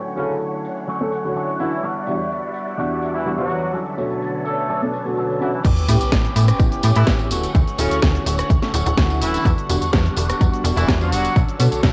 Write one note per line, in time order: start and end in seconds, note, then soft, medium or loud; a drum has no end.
0.00 1.81 D3 medium
0.00 0.87 F#3 medium
0.00 0.87 A3 medium
0.00 0.88 C#4 medium
0.00 0.89 F#4 medium
0.00 1.81 C#5 medium
0.00 1.81 F#5 medium
0.15 0.35 C#3 medium
0.15 0.97 D3 medium
0.15 0.97 A3 medium
0.15 0.97 C#4 medium
0.15 0.35 C#4 medium
0.15 0.98 E4 medium
0.15 0.98 F#4 medium
0.15 tambourine medium
0.30 tambourine soft
0.41 tambourine soft
0.65 tambourine medium
0.77 tambourine soft
0.88 1.35 F#3 medium
0.88 1.35 A3 medium
0.88 1.35 C#4 medium
0.88 1.37 F#4 medium
0.88 tambourine soft
1.00 1.07 D3 medium
1.00 1.07 A3 medium
1.00 1.07 C#4 medium
1.00 1.08 E4 medium
1.00 1.08 A4 medium
1.12 tambourine medium
1.24 1.57 D3 medium
1.24 1.57 A3 medium
1.24 1.57 C#4 medium
1.24 1.57 E4 medium
1.24 1.57 F#4 medium
1.24 tambourine soft
1.35 1.82 F#3 medium
1.35 1.83 A3 medium
1.35 1.84 C#4 medium
1.35 1.85 F#4 medium
1.35 tambourine soft
1.49 tambourine soft
1.59 1.67 D3 medium
1.59 1.88 E3 medium
1.59 1.67 A3 medium
1.59 1.67 C#4 medium
1.59 1.88 E4 medium
1.59 1.67 E4 medium
1.59 1.67 F#4 medium
1.59 tambourine medium
1.73 tambourine soft
1.82 2.77 G3 medium
1.82 3.72 G3 medium
1.82 2.78 B3 medium
1.82 2.79 D4 medium
1.82 3.72 E4 medium
1.82 2.80 F#4 loud
1.82 3.72 D5 medium
1.82 3.72 F#5 medium
1.82 tambourine soft
2.07 2.15 E2 medium
2.07 2.15 G3 medium
2.07 2.15 B3 medium
2.07 2.15 D4 medium
2.07 2.15 F#4 medium
2.07 tambourine medium
2.20 tambourine soft
2.32 tambourine soft
2.54 tambourine medium
2.68 tambourine soft
2.78 3.23 E2 medium
2.78 3.23 G3 medium
2.78 3.25 G3 medium
2.78 3.23 B3 medium
2.78 3.26 B3 medium
2.78 3.23 D4 medium
2.78 3.27 D4 medium
2.78 3.24 F#4 medium
2.78 3.27 F#4 medium
2.78 tambourine soft
3.03 tambourine medium
3.14 3.33 E3 medium
3.14 3.33 E4 medium
3.14 tambourine soft
3.25 3.35 E2 medium
3.25 3.35 G3 medium
3.25 3.73 G3 medium
3.25 3.36 B3 medium
3.25 3.74 B3 medium
3.25 3.36 D4 medium
3.25 3.74 D4 medium
3.25 3.36 F#4 medium
3.25 3.75 F#4 medium
3.25 tambourine soft
3.38 3.47 E2 medium
3.38 3.79 F#3 medium
3.38 3.47 G3 medium
3.38 3.47 B3 medium
3.38 3.47 D4 medium
3.38 3.47 F#4 loud
3.38 3.79 F#4 medium
3.38 tambourine soft
3.50 3.62 E2 medium
3.50 3.62 G3 medium
3.50 3.62 B3 medium
3.50 3.62 D4 medium
3.50 3.62 F#4 medium
3.50 tambourine medium
3.62 tambourine soft
3.74 5.63 D3 medium
3.74 4.45 F#3 medium
3.74 4.46 C#4 loud
3.74 4.45 D4 medium
3.74 4.44 A4 medium
3.74 5.62 B4 medium
3.74 5.62 C#5 medium
3.74 5.63 A5 medium
3.74 tambourine soft
3.86 tambourine soft
3.97 4.78 B2 medium
3.97 4.79 D3 medium
3.97 4.78 A3 medium
3.97 4.79 F#4 medium
3.97 4.79 C#5 medium
3.97 tambourine medium
4.10 tambourine soft
4.22 tambourine medium
4.45 4.82 A3 medium
4.45 4.68 C#4 soft
4.45 4.69 D4 medium
4.45 4.69 A4 medium
4.45 4.82 A4 medium
4.45 tambourine medium
4.58 tambourine soft
4.69 5.15 F#3 medium
4.69 5.17 C#4 medium
4.69 5.17 D4 medium
4.69 5.18 A4 medium
4.69 tambourine soft
4.81 4.88 B2 medium
4.81 4.88 A3 medium
4.81 4.89 C#4 medium
4.81 4.89 D4 medium
4.81 4.89 A4 medium
4.81 tambourine soft
4.94 tambourine medium
5.05 5.37 B2 medium
5.05 5.38 D3 medium
5.05 5.38 A3 medium
5.05 5.38 F#4 medium
5.05 5.38 C#5 medium
5.05 tambourine soft
5.16 5.64 F#3 medium
5.16 5.64 C#4 medium
5.16 5.65 D4 medium
5.16 5.65 A4 medium
5.16 tambourine soft
5.30 tambourine soft
5.40 5.48 B2 medium
5.40 5.49 E3 medium
5.40 5.48 A3 medium
5.40 5.48 C#4 medium
5.40 5.48 D4 medium
5.40 5.49 E4 medium
5.40 5.48 F#4 medium
5.40 tambourine medium
5.53 5.60 E3 medium
5.53 5.60 E4 medium
5.53 tambourine soft
5.64 5.73 A1 loud
5.64 6.01 E3 medium
5.64 6.01 B3 medium
5.64 7.30 C#4 medium
5.64 6.00 C#4 medium
5.64 5.99 G4 medium
5.64 7.30 B4 medium
5.64 7.30 G5 medium
5.64 kick loud
5.64 closed hi-hat medium
5.64 crash loud
5.64 tambourine soft
5.64 sub drop medium
5.64 shaker soft
5.77 closed hi-hat soft
5.77 shaker soft
5.88 5.96 A2 medium
5.88 5.96 B3 medium
5.88 5.96 C#4 medium
5.88 5.96 E4 medium
5.88 5.96 G4 medium
5.88 open hi-hat loud
5.88 tambourine medium
5.88 shaker medium
6.00 6.10 A1 soft
6.00 6.11 B3 medium
6.00 6.12 C#4 medium
6.00 6.12 G4 medium
6.00 closed hi-hat medium
6.00 tambourine soft
6.00 shaker soft
6.12 6.28 A1 medium
6.12 6.35 B3 loud
6.12 6.36 C#4 medium
6.12 kick loud
6.12 snare loud
6.12 closed hi-hat medium
6.12 tambourine medium
6.12 shaker soft
6.25 closed hi-hat soft
6.25 shaker soft
6.35 6.52 A2 medium
6.35 6.48 E3 medium
6.35 6.48 B3 medium
6.35 6.48 C#4 medium
6.35 6.47 G4 medium
6.35 open hi-hat loud
6.35 tambourine medium
6.35 shaker medium
6.48 6.72 B3 medium
6.48 6.72 C#4 medium
6.48 6.70 G4 medium
6.48 cross-stick medium
6.48 closed hi-hat medium
6.48 tambourine soft
6.48 shaker soft
6.59 6.68 A1 medium
6.59 7.04 B3 medium
6.59 7.04 C#4 medium
6.59 7.04 E4 medium
6.59 7.04 G4 medium
6.59 kick loud
6.59 closed hi-hat medium
6.59 tambourine medium
6.59 shaker soft
6.72 6.82 B3 soft
6.72 6.83 C#4 medium
6.72 6.83 G4 medium
6.72 closed hi-hat soft
6.72 shaker soft
6.83 6.92 A2 loud
6.83 7.06 E3 medium
6.83 7.06 B3 medium
6.83 7.07 C#4 medium
6.83 7.07 G4 medium
6.83 open hi-hat loud
6.83 tambourine medium
6.83 shaker medium
6.95 7.04 A2 medium
6.95 7.14 E3 medium
6.95 7.14 E4 medium
6.95 closed hi-hat medium
6.95 tambourine soft
6.95 shaker soft
7.07 7.32 A1 medium
7.07 7.16 B3 medium
7.07 7.16 C#4 medium
7.07 7.17 E4 medium
7.07 7.17 G4 loud
7.07 kick loud
7.07 snare loud
7.07 closed hi-hat medium
7.07 tambourine medium
7.07 shaker soft
7.19 7.28 B3 medium
7.19 7.28 C#4 medium
7.19 7.28 E4 medium
7.19 7.28 G4 loud
7.19 closed hi-hat soft
7.19 tambourine soft
7.30 7.47 D1 loud
7.30 11.93 D3 medium
7.30 7.53 F#3 medium
7.30 7.43 A3 medium
7.30 7.54 A3 medium
7.30 7.43 C#4 medium
7.30 7.54 C#4 medium
7.30 7.43 E4 medium
7.30 7.43 F#4 medium
7.30 7.54 F#4 medium
7.30 9.43 C#5 medium
7.30 11.32 F#5 medium
7.30 open hi-hat loud
7.30 tambourine medium
7.30 shaker medium
7.43 closed hi-hat medium
7.43 tambourine soft
7.43 shaker soft
7.54 7.63 D2 loud
7.54 7.91 F#3 medium
7.54 7.91 A3 loud
7.54 7.90 C#4 loud
7.54 7.89 F#4 loud
7.54 kick loud
7.54 closed hi-hat medium
7.54 tambourine medium
7.54 shaker soft
7.67 closed hi-hat soft
7.67 shaker soft
7.78 7.87 D1 medium
7.78 7.97 C#3 medium
7.78 8.59 A3 medium
7.78 7.97 C#4 medium
7.78 8.59 C#4 medium
7.78 8.60 E4 medium
7.78 8.60 F#4 loud
7.78 open hi-hat loud
7.78 tambourine loud
7.78 shaker medium
7.90 8.00 D2 soft
7.90 8.01 A3 medium
7.90 8.01 C#4 medium
7.90 8.02 F#4 medium
7.90 closed hi-hat medium
7.90 tambourine soft
7.90 shaker soft
8.02 8.18 D2 medium
8.02 8.24 F#3 medium
8.02 8.25 A3 loud
8.02 8.26 F#4 loud
8.02 kick loud
8.02 snare loud
8.02 closed hi-hat medium
8.02 tambourine medium
8.02 shaker soft
8.15 closed hi-hat soft
8.15 shaker soft
8.25 8.42 D1 medium
8.25 8.38 F#3 medium
8.25 8.39 A3 medium
8.25 8.38 C#4 medium
8.25 8.37 F#4 medium
8.25 open hi-hat loud
8.25 tambourine loud
8.25 shaker medium
8.38 8.63 A3 medium
8.38 8.62 C#4 medium
8.38 8.61 F#4 medium
8.38 cross-stick medium
8.38 closed hi-hat medium
8.38 tambourine soft
8.38 shaker soft
8.50 8.58 D2 medium
8.50 kick loud
8.50 closed hi-hat medium
8.50 tambourine soft
8.50 shaker soft
8.62 8.69 A3 medium
8.62 8.73 A3 medium
8.62 8.69 C#4 medium
8.62 8.73 C#4 medium
8.62 8.70 E4 medium
8.62 8.74 F#4 medium
8.62 8.70 A4 loud
8.62 snare soft
8.62 closed hi-hat soft
8.62 shaker soft
8.73 8.82 D1 loud
8.73 8.96 F#3 medium
8.73 8.97 A3 medium
8.73 8.97 C#4 medium
8.73 8.97 F#4 medium
8.73 open hi-hat loud
8.73 tambourine medium
8.73 shaker medium
8.86 8.94 D1 loud
8.86 closed hi-hat medium
8.86 tambourine soft
8.86 shaker soft
8.97 9.23 D2 medium
8.97 9.07 A3 medium
8.97 9.07 C#4 medium
8.97 9.21 C#4 loud
8.97 9.07 E4 medium
8.97 9.07 F#4 loud
8.97 9.22 F#4 loud
8.97 kick loud
8.97 snare loud
8.97 closed hi-hat medium
8.97 tambourine soft
8.97 shaker soft
9.10 9.44 A3 medium
9.10 9.44 C#4 medium
9.10 9.44 E4 medium
9.10 9.44 F#4 medium
9.10 closed hi-hat soft
9.10 tambourine soft
9.21 9.37 D1 loud
9.21 9.50 E3 medium
9.21 9.44 F#3 medium
9.21 9.45 A3 medium
9.21 9.45 C#4 medium
9.21 9.50 E4 medium
9.21 9.45 F#4 medium
9.21 open hi-hat loud
9.21 tambourine medium
9.21 shaker medium
9.34 closed hi-hat medium
9.34 tambourine soft
9.34 shaker soft
9.45 9.53 E2 loud
9.45 9.81 G3 medium
9.45 11.34 G3 medium
9.45 9.81 D4 loud
9.45 9.80 F#4 loud
9.45 kick loud
9.45 closed hi-hat medium
9.45 tambourine medium
9.45 shaker soft
9.58 closed hi-hat soft
9.58 shaker soft
9.69 9.77 E1 medium
9.69 9.76 G3 medium
9.69 9.77 B3 medium
9.69 9.77 D4 medium
9.69 9.77 F#4 medium
9.69 open hi-hat loud
9.69 tambourine loud
9.69 shaker medium
9.81 9.91 E2 soft
9.81 9.91 B3 medium
9.81 9.92 D4 medium
9.81 9.92 F#4 medium
9.81 closed hi-hat medium
9.81 tambourine soft
9.81 shaker soft
9.92 10.09 E2 medium
9.92 10.15 G3 loud
9.92 10.15 B3 medium
9.92 kick loud
9.92 snare loud
9.92 closed hi-hat medium
9.92 shaker soft
10.06 closed hi-hat soft
10.06 shaker soft
10.16 10.33 E1 medium
10.16 10.29 G3 medium
10.16 10.29 B3 medium
10.16 10.28 D4 medium
10.16 10.27 F#4 medium
10.16 open hi-hat loud
10.16 tambourine medium
10.16 shaker medium
10.28 10.52 B3 medium
10.28 10.52 D4 medium
10.28 10.50 F#4 medium
10.28 cross-stick medium
10.28 closed hi-hat medium
10.28 tambourine soft
10.28 shaker soft
10.40 10.49 E2 medium
10.40 10.85 G3 medium
10.40 10.85 B3 medium
10.40 10.85 D4 medium
10.40 10.86 F#4 medium
10.40 kick loud
10.40 closed hi-hat medium
10.40 tambourine medium
10.40 shaker soft
10.52 10.63 B3 medium
10.52 10.63 D4 medium
10.52 10.64 F#4 medium
10.52 closed hi-hat soft
10.52 shaker soft
10.63 10.72 E1 loud
10.63 10.86 G3 medium
10.63 10.86 B3 medium
10.63 10.87 D4 medium
10.63 10.87 F#4 medium
10.63 open hi-hat loud
10.63 tambourine medium
10.63 shaker medium
10.77 10.84 E1 loud
10.77 10.94 E3 medium
10.77 10.94 E4 medium
10.77 closed hi-hat medium
10.77 tambourine soft
10.77 shaker soft
10.87 11.13 E2 medium
10.87 11.10 G3 loud
10.87 10.97 G3 medium
10.87 11.10 B3 medium
10.87 10.98 B3 medium
10.87 11.11 D4 loud
10.87 10.98 D4 medium
10.87 11.11 F#4 loud
10.87 10.98 F#4 loud
10.87 kick loud
10.87 snare loud
10.87 closed hi-hat soft
10.87 shaker soft
11.00 11.41 F#3 medium
11.00 11.09 G3 medium
11.00 11.09 B3 medium
11.00 11.09 D4 medium
11.00 11.41 F#4 loud
11.00 11.09 F#4 loud
11.00 closed hi-hat soft
11.00 tambourine soft
11.11 11.28 E1 loud
11.11 11.34 G3 medium
11.11 11.24 G3 medium
11.11 11.35 B3 medium
11.11 11.24 B3 medium
11.11 11.24 D4 medium
11.11 11.35 D4 medium
11.11 11.24 F#4 medium
11.11 11.36 F#4 medium
11.11 open hi-hat loud
11.11 tambourine medium
11.11 shaker medium
11.25 closed hi-hat medium
11.25 tambourine soft
11.25 shaker soft
11.35 11.44 B1 medium
11.35 11.72 F#3 medium
11.35 11.72 C#4 loud
11.35 11.71 D4 loud
11.35 11.70 A4 loud
11.35 11.93 C#5 medium
11.35 11.93 A5 medium
11.35 kick loud
11.35 closed hi-hat medium
11.35 tambourine medium
11.35 shaker soft
11.48 closed hi-hat soft
11.48 shaker soft
11.58 11.68 B2 medium
11.58 11.93 D3 medium
11.58 11.93 A3 medium
11.58 11.93 F#4 loud
11.58 11.93 C#5 medium
11.58 open hi-hat loud
11.58 tambourine loud
11.58 shaker medium
11.71 11.81 B1 soft
11.71 11.82 C#4 medium
11.71 11.82 D4 medium
11.71 11.83 A4 medium
11.71 closed hi-hat medium
11.71 tambourine soft
11.71 shaker soft
11.83 11.93 B1 medium
11.83 11.93 F#3 medium
11.83 11.93 C#4 medium
11.83 11.93 D4 medium
11.83 11.93 A4 loud
11.83 kick loud
11.83 snare loud
11.83 closed hi-hat medium
11.83 tambourine medium
11.83 shaker soft